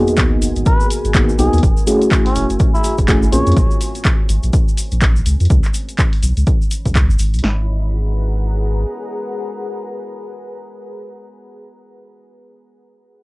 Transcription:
Already playing: fm electric piano A#3 B3 D#4 F#4 G#4, ambient pad F#4 A#4 G#5, sub drop
0.08 closed hi-hat, cabasa
0.17 kick, clap, closed hi-hat, cabasa
0.42 sub bass F#1, open hi-hat, cabasa
0.56 sub bass G#1, closed hi-hat, cabasa
0.66 muted trumpet B4, kick, closed hi-hat, cabasa
0.80 cabasa
0.90 open hi-hat, cabasa
1.05 sub bass G#1, closed hi-hat, cabasa
1.14 fm electric piano A#3 B3 D#4 F#4 G#4, kick, clap, closed hi-hat, cabasa
1.29 cabasa
1.39 sub bass B1, fm electric piano A#3 B3 D#4 F#4 G#4, muted trumpet G#4, open hi-hat, cabasa
1.53 sub bass D#2, closed hi-hat, cabasa
1.58 closed hi-hat
1.63 sub bass F#1, ambient pad A3 F#4 E5 G#5, kick, closed hi-hat, cabasa
1.77 cabasa
1.87 fm electric piano A3 C#4 E4 F#4 G#4, open hi-hat, cabasa
2.02 closed hi-hat, cabasa
2.11 kick, clap, closed hi-hat, cabasa
2.26 muted trumpet C#4, open hi-hat
2.35 sub bass E1, open hi-hat, cabasa
2.50 sub bass F#1, closed hi-hat, cabasa
2.59 kick, closed hi-hat, cabasa
2.74 muted trumpet E4, cabasa
2.84 open hi-hat, cabasa
2.98 sub bass F#1, kick, closed hi-hat, cabasa
3.08 fm electric piano A3 C#4 E4 F#4 G#4, kick, clap, closed hi-hat, cabasa
3.23 cabasa
3.32 sub bass A#1, fm electric piano A#3 C4 C#4 F4 G#4, ambient pad G#4 C5 C#5 A#5, muted trumpet C#5, open hi-hat, cabasa
3.47 sub bass F2, closed hi-hat, cabasa
3.52 closed hi-hat
3.57 sub bass A#1, kick, closed hi-hat, cabasa
3.71 cabasa
3.81 open hi-hat, cabasa
3.95 closed hi-hat, cabasa
4.05 kick, clap, closed hi-hat, cabasa
4.29 sub bass G#1, open hi-hat, cabasa
4.43 sub bass A#1, closed hi-hat, cabasa
4.53 kick, closed hi-hat, cabasa
4.68 cabasa
4.78 open hi-hat, cabasa
4.92 sub bass A#1, closed hi-hat, cabasa
5.01 kick, clap, closed hi-hat, cabasa
5.16 cabasa
5.26 sub bass C#2, open hi-hat, cabasa
5.40 sub bass F2, closed hi-hat, cabasa
5.45 closed hi-hat
5.50 sub bass C#2, ambient pad E4 D#5 B5, kick, closed hi-hat, cabasa
5.63 clap, cabasa
5.74 open hi-hat, cabasa
5.89 closed hi-hat, cabasa
5.98 kick, clap, closed hi-hat, cabasa
6.13 open hi-hat
6.23 sub bass B1, open hi-hat, cabasa
6.37 sub bass C#2, closed hi-hat, cabasa
6.47 kick, closed hi-hat, cabasa
6.62 cabasa
6.71 open hi-hat, cabasa
6.85 sub bass C#2, kick, closed hi-hat, cabasa
6.95 kick, clap, closed hi-hat, cabasa
7.10 sub bass G#1, cabasa
7.19 sub bass G#1, open hi-hat, cabasa
7.34 sub bass B1, closed hi-hat, cabasa
7.39 closed hi-hat
7.43 sub bass G#1, ambient pad G#4 B4 F#5 A#5, snare

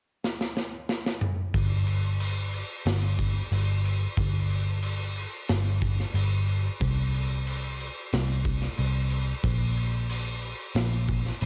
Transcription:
0.24 snare
0.41 snare
0.57 snare
0.89 snare
1.06 snare
1.21 mid tom
1.54 picked electric bass G1, kick, crash
1.87 crash
2.20 crash
2.54 crash
2.86 picked electric bass G1, snare, crash
3.19 kick, crash
3.52 picked electric bass G1, crash
3.85 crash
4.17 picked electric bass G1, kick, crash
4.50 crash
4.82 crash
5.16 crash
5.48 picked electric bass G1, snare, crash
5.82 kick, crash
6.00 snare
6.14 picked electric bass G1, crash
6.48 crash
6.81 picked electric bass C2, kick, crash
7.14 crash
7.46 crash
7.80 crash
8.13 picked electric bass C2, snare, crash
8.45 kick, crash
8.62 snare
8.77 picked electric bass C2, crash
9.10 crash
9.43 picked electric bass A#1, kick, crash
9.77 crash
10.10 crash
10.42 crash
10.75 picked electric bass A#1, snare, crash
11.08 kick, crash
11.26 snare
11.41 picked electric bass A#1, crash

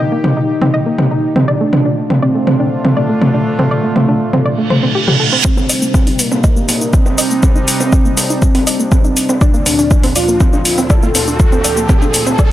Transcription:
Already playing: analog synth pad D#3 A#3 D#4 G4, analog synth lead D#4
0.12 synth arpeggio sound A#3
0.24 synth arpeggio sound C4, mid tom
0.37 synth arpeggio sound D#4
0.61 synth arpeggio sound C4, mid tom
0.74 synth arpeggio sound D#5
0.86 synth arpeggio sound A#3
0.98 synth arpeggio sound C4, mid tom
1.11 synth arpeggio sound D#4
1.36 synth arpeggio sound C4, mid tom
1.48 analog synth pad D3 A3 D4 F4, analog synth lead D4, synth arpeggio sound D5
1.61 synth arpeggio sound A3
1.73 synth arpeggio sound C4, mid tom
1.86 synth arpeggio sound D4
2.10 synth arpeggio sound C4, mid tom
2.22 analog synth lead C4, synth arpeggio sound D5
2.35 synth arpeggio sound A3
2.47 synth arpeggio sound C4, mid tom
2.60 synth arpeggio sound D4
2.85 synth arpeggio sound C4, mid tom
2.97 analog synth lead A3, synth arpeggio sound D5
3.09 synth arpeggio sound A3
3.21 synth arpeggio sound C4, mid tom
3.34 synth arpeggio sound D4
3.59 synth arpeggio sound C4, mid tom
3.71 synth arpeggio sound D5
3.84 synth arpeggio sound A3
3.96 synth arpeggio sound C4, mid tom
4.08 synth arpeggio sound D4
4.33 synth arpeggio sound C4, mid tom
4.45 synth arpeggio sound D5, reverse cymbal
4.58 synth arpeggio sound A3
4.70 synth arpeggio sound C5, mid tom
4.83 synth arpeggio sound C4
4.95 synth arpeggio sound G4
5.08 synth arpeggio sound G4, mid tom
5.20 synth arpeggio sound A4
5.32 synth arpeggio sound C4
5.45 analog synth pad C3 G3 D4 D#4, analog synth lead C4, kick, riser, shaker
5.57 synth arpeggio sound C4, mid tom, shaker
5.69 synth arpeggio sound D#5, open hi-hat, shaker
5.82 synth arpeggio sound A#3, shaker
5.94 synth arpeggio sound C4, kick, mid tom, shaker
6.07 synth arpeggio sound D#4, open hi-hat, shaker
6.19 analog synth lead A#3, open hi-hat, shaker
6.31 synth arpeggio sound C4, mid tom, shaker
6.44 synth arpeggio sound D#5, kick, shaker
6.56 synth arpeggio sound A#3, shaker
6.69 synth arpeggio sound C4, open hi-hat, mid tom, shaker
6.81 synth arpeggio sound D#4, shaker
6.93 analog synth lead C4, kick, shaker
7.06 synth arpeggio sound C4, mid tom, shaker
7.18 synth arpeggio sound D#5, open hi-hat, shaker
7.31 synth arpeggio sound A#3, shaker
7.43 synth arpeggio sound C4, kick, mid tom, shaker
7.55 synth arpeggio sound D#4, shaker
7.68 open hi-hat, shaker
7.80 synth arpeggio sound C4, mid tom, shaker
7.92 synth arpeggio sound D#5, kick, shaker
8.05 synth arpeggio sound A#3, shaker
8.17 synth arpeggio sound C4, open hi-hat, mid tom, shaker
8.30 synth arpeggio sound D#4, shaker
8.42 kick, shaker
8.55 synth arpeggio sound C4, open hi-hat, mid tom, shaker
8.67 synth arpeggio sound D#5, open hi-hat, shaker
8.79 synth arpeggio sound A#3, shaker
8.92 synth arpeggio sound C4, kick, mid tom, shaker
9.04 synth arpeggio sound D#4, shaker
9.17 open hi-hat, shaker
9.29 synth arpeggio sound C4, mid tom, shaker
9.41 analog synth pad D2 A#2 F3 C4, analog synth lead D4, synth arpeggio sound D5, kick, shaker
9.54 synth arpeggio sound A#3, shaker
9.66 synth arpeggio sound C4, open hi-hat, mid tom, shaker
9.79 synth arpeggio sound D4, shaker
9.91 kick, shaker
10.03 synth arpeggio sound C4, open hi-hat, mid tom, shaker
10.16 analog synth lead F4, synth arpeggio sound D5, open hi-hat, shaker
10.28 synth arpeggio sound A#3, shaker
10.40 synth arpeggio sound C4, kick, mid tom, shaker
10.53 synth arpeggio sound D4, shaker
10.65 open hi-hat, shaker
10.78 synth arpeggio sound C4, mid tom, shaker
10.90 analog synth lead A4, synth arpeggio sound D5, kick, shaker
11.03 synth arpeggio sound A#3, shaker
11.15 synth arpeggio sound C4, open hi-hat, mid tom, shaker
11.27 synth arpeggio sound D4, shaker
11.40 kick, shaker
11.52 synth arpeggio sound C4, mid tom, shaker
11.64 synth arpeggio sound D5, open hi-hat, shaker
11.77 synth arpeggio sound A#3, shaker
11.89 synth arpeggio sound C4, kick, mid tom, shaker
12.02 synth arpeggio sound D4, shaker
12.14 open hi-hat, shaker
12.27 synth arpeggio sound C4, mid tom, shaker
12.39 synth arpeggio sound D5, kick, shaker

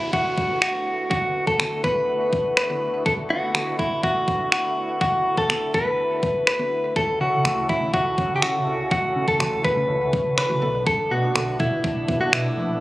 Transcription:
Already playing: synth pluck D3 B3 F#4, supersaw synth D3 A3 B3 E4 F#4, clean electric guitar E4, downlifter
0.13 clean electric guitar F#4, kick
0.38 kick
0.62 clean electric guitar F#4, finger snap
1.10 synth pluck D3 B3 C#4, clean electric guitar F#4, kick
1.47 clean electric guitar A4, kick
1.59 synth pluck D3 B3 F#4, finger snap
1.84 synth pluck D3 B3 F#4, clean electric guitar B4, kick
2.33 kick
2.57 clean electric guitar B4, finger snap
2.69 synth pluck D3 B3 F#4
3.06 synth pluck D3 B3 F#4, clean electric guitar A4, kick
3.30 clean electric guitar F#4
3.54 synth pluck D3 B3 F#4, finger snap
3.79 synth pluck D3 B3 E4, clean electric guitar E4, kick
4.03 clean electric guitar F#4, kick
4.28 kick
4.52 clean electric guitar F#4, finger snap
5.01 synth pluck D3 B3 F#4, clean electric guitar F#4, kick
5.37 clean electric guitar A4, kick
5.50 synth pluck D3 B3 F#4, finger snap
5.74 synth pluck D3 B3 F#4, clean electric guitar B4, kick
6.23 kick
6.47 clean electric guitar B4, finger snap
6.59 synth pluck D3 B3 F#4
6.96 analog synth bass C#2, supersaw synth C#3 C#4 F#4 A4, synth pluck E3 A3 F#4, clean electric guitar A4, kick
7.21 analog synth bass C#3, clean electric guitar F#4
7.45 analog synth bass C#2, synth pluck E3 A3 F#4, finger snap
7.69 analog synth bass C#3, synth pluck E3 A3 F#4, clean electric guitar E4, kick
7.81 analog synth bass C#3
7.94 analog synth bass C#2, clean electric guitar F#4, kick
8.18 analog synth bass C#3, kick
8.36 clean electric guitar G4
8.42 analog synth bass C#3, clean electric guitar F#4, finger snap
8.67 analog synth bass C2
8.91 analog synth bass C#2, synth pluck E3 A3 F#4, clean electric guitar F#4, kick
9.16 analog synth bass C#3
9.28 clean electric guitar A4, kick
9.40 analog synth bass C#2, synth pluck E3 A3 F#4, finger snap
9.64 analog synth bass C#3, synth pluck E3 A3 F#4, clean electric guitar B4, kick
9.77 analog synth bass C#3
9.89 analog synth bass C#2
10.13 analog synth bass C#3, kick
10.38 analog synth bass C#3, clean electric guitar B4, finger snap
10.49 synth pluck E3 A3 F#4
10.61 analog synth bass B1, synth pluck D3 B3 A4, supersaw synth A3 B3 D4
10.87 clean electric guitar A4, kick
11.11 analog synth bass B2, clean electric guitar F#4
11.35 analog synth bass B1, synth pluck D3 B3 A4, finger snap
11.59 analog synth bass B2, synth pluck D3 B3 A4, clean electric guitar E4, kick
11.72 analog synth bass B2
11.84 analog synth bass B1, kick
12.08 analog synth bass B2, kick
12.21 clean electric guitar F#4
12.33 analog synth bass B2, clean electric guitar E4, finger snap
12.57 analog synth bass A#1

